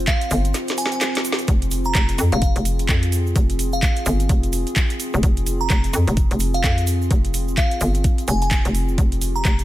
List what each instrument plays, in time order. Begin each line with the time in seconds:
Already playing: analog synth pad C4 F4 C5
0.07 synth bell F5, kick, clap, closed hi-hat, shaker
0.21 closed hi-hat, shaker
0.31 fm bass G1, open hi-hat, shaker
0.45 closed hi-hat, shaker
0.54 snare, closed hi-hat, shaker
0.67 snare, closed hi-hat, shaker
0.77 synth bell G#5, open hi-hat, shaker
0.86 snare
0.92 synth bell G#5, closed hi-hat, shaker
1.01 snare, clap, closed hi-hat, shaker
1.15 snare, closed hi-hat, shaker
1.25 open hi-hat, shaker
1.32 snare
1.39 closed hi-hat, shaker
1.48 fm bass F1, analog synth pad G#4, kick, closed hi-hat, shaker
1.62 closed hi-hat, shaker
1.71 open hi-hat, shaker
1.85 synth bell A#5, shaker
1.95 fm bass F1, kick, clap, closed hi-hat, shaker
2.09 closed hi-hat, shaker
2.18 fm bass F2, open hi-hat, shaker
2.32 fm bass F1, synth bell F5, closed hi-hat, shaker
2.42 synth bell F5, kick, closed hi-hat, shaker
2.55 fm bass F1, closed hi-hat, shaker
2.65 open hi-hat, shaker
2.79 closed hi-hat, shaker
2.89 fm bass F2, kick, clap, closed hi-hat, shaker
3.02 closed hi-hat, shaker
3.12 open hi-hat, shaker
3.27 shaker
3.36 fm bass F1, kick, closed hi-hat, shaker
3.50 closed hi-hat, shaker
3.59 open hi-hat, shaker
3.73 synth bell F5, shaker
3.83 kick, clap, closed hi-hat, shaker
3.96 closed hi-hat, shaker
4.06 fm bass G1, open hi-hat, shaker
4.20 closed hi-hat, shaker
4.29 fm bass F1, kick, closed hi-hat, shaker
4.43 closed hi-hat, shaker
4.53 open hi-hat, shaker
4.67 closed hi-hat, shaker
4.76 kick, clap, closed hi-hat, shaker
4.90 closed hi-hat, shaker
5.00 open hi-hat, shaker
5.14 fm bass F1, shaker
5.23 fm bass F1, kick, closed hi-hat, shaker
5.37 closed hi-hat, shaker
5.46 open hi-hat, shaker
5.60 synth bell A#5, shaker
5.70 fm bass F1, kick, clap, closed hi-hat, shaker
5.84 closed hi-hat, shaker
5.93 fm bass F2, open hi-hat, shaker
6.08 fm bass F1, closed hi-hat, shaker
6.17 kick, closed hi-hat, shaker
6.31 fm bass F1, closed hi-hat, shaker
6.39 open hi-hat, shaker
6.54 synth bell F5, closed hi-hat, shaker
6.64 fm bass F2, kick, clap, closed hi-hat, shaker
6.78 closed hi-hat, shaker
6.87 open hi-hat, shaker
7.02 shaker
7.11 fm bass F1, kick, closed hi-hat, shaker
7.25 closed hi-hat, shaker
7.34 open hi-hat, shaker
7.48 shaker
7.57 synth bell F5, kick, clap, closed hi-hat, shaker
7.71 closed hi-hat, shaker
7.81 fm bass G1, open hi-hat, shaker
7.94 closed hi-hat, shaker
8.04 kick, closed hi-hat, shaker
8.18 closed hi-hat, shaker
8.28 fm bass F1, synth bell G#5, open hi-hat, shaker
8.42 synth bell G#5, closed hi-hat, shaker
8.51 kick, clap, closed hi-hat, shaker
8.65 fm bass F1, closed hi-hat, shaker
8.75 open hi-hat, shaker
8.88 shaker
8.98 fm bass F1, analog synth pad G4, kick, closed hi-hat, shaker
9.12 closed hi-hat, shaker
9.21 open hi-hat, shaker
9.35 synth bell A#5, shaker
9.45 fm bass F1, kick, clap, closed hi-hat, shaker
9.59 closed hi-hat, shaker